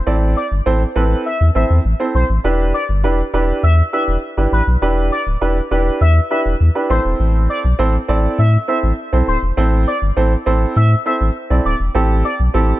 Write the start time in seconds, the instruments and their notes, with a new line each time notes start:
0.07 sub bass A1, grand piano C4 E4 A4 D5
0.37 analog synth lead D5
0.52 sub bass G1
0.66 sub bass A1, grand piano C4 E4 A4 C5
0.96 sub bass A1, grand piano C4 E4 A4 B4
1.26 analog synth lead E5
1.41 sub bass E2
1.55 sub bass A1, grand piano C4 E4 A4 C5, analog synth lead E5
1.70 sub bass E2
1.85 sub bass A1
2.00 grand piano C4 E4 A4 C5
2.15 sub bass B1, analog synth lead C5
2.30 sub bass A1
2.44 sub bass E1, grand piano D4 E4 G4 B4
2.74 analog synth lead D5
2.89 sub bass G1
3.04 sub bass E1, grand piano D4 E4 G4 B4
3.34 sub bass E1, grand piano D4 E4 G4 B4
3.63 sub bass E2, analog synth lead E5
3.93 grand piano D4 E4 G4 B4, analog synth lead E5
4.08 sub bass E1
4.37 sub bass G1, grand piano D4 E4 G4 B4
4.52 sub bass A1, analog synth lead B4
4.67 sub bass B1
4.82 sub bass E1, grand piano D4 E4 G4 B4
5.12 analog synth lead D5
5.27 sub bass D1
5.41 sub bass E1, grand piano D4 E4 G4 B4
5.71 sub bass E1, grand piano D4 E4 G4 B4
6.01 sub bass E2, analog synth lead E5
6.30 grand piano D4 E4 G4 B4, analog synth lead E5
6.46 sub bass E1
6.61 sub bass E2
6.75 grand piano D4 E4 G4 B4
6.90 sub bass A1, grand piano C4 E4 A4 C5, analog synth lead C5
7.05 sub bass E1
7.20 sub bass A1
7.50 analog synth lead D5
7.64 sub bass B1
7.79 sub bass A1, grand piano C4 E4 A4 C5
8.09 sub bass A1, grand piano C4 E4 A4 D5
8.39 sub bass A2, analog synth lead E5
8.68 grand piano C4 E4 A4 C5, analog synth lead E5
8.83 sub bass A1
9.13 sub bass B1, grand piano C4 E4 A4 C5
9.28 sub bass D1, analog synth lead C5
9.43 sub bass E1
9.57 sub bass A1, grand piano C4 E4 A4 C5
9.88 analog synth lead D5
10.02 sub bass G1
10.17 sub bass A1, grand piano C4 E4 A4 C5
10.46 sub bass A1, grand piano C4 E4 A4 C5
10.76 sub bass A2, analog synth lead E5
11.06 grand piano C4 E4 A4 C5, analog synth lead E5
11.21 sub bass A1
11.50 sub bass B1, grand piano C4 E4 A4 D5
11.65 sub bass D1, analog synth lead D5
11.80 sub bass E1
11.95 sub bass A1, grand piano C4 E4 G4 A4
12.25 analog synth lead D5
12.40 sub bass B1
12.54 sub bass A1, grand piano C4 E4 G4 A4